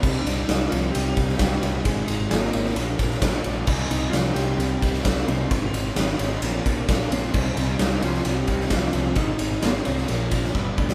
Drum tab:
CC |x---------------|----------------|x---------------|----------------|
RD |--x-x-x-x-x-x-x-|x-x-x-x-x-x-x-x-|--x-x-x-x-x-x-x-|x-x-x-x-x-x-x-x-|
SD |----o------oo---|----o--o---oo---|----o------oo---|----o-------o---|
BD |o---------o-o---|o---------o-o---|o---------o-o---|o---------o-o---|

CC |x---------------|----------------|
RD |--x-x-x-x-x-x-x-|x-x-x-x-x-x-----|
SD |----o--o---oo---|----o--o---o---o|
BD |o---------o-o---|o---------o-o-o-|